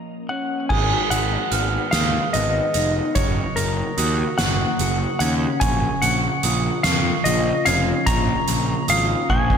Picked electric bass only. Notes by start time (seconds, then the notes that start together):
0.70 G#1
1.11 G#1
1.52 G#1
1.94 D#2
2.35 G#1
2.75 F1
3.16 F#1
3.57 F#1
3.98 D#2
4.39 F#1
4.80 F#1
5.21 D#2
5.62 A#1
6.03 A#1
6.44 A#1
6.85 F2
7.26 A#1
7.67 F1
8.07 A#1
8.48 A#1
8.89 G#1
9.30 A#1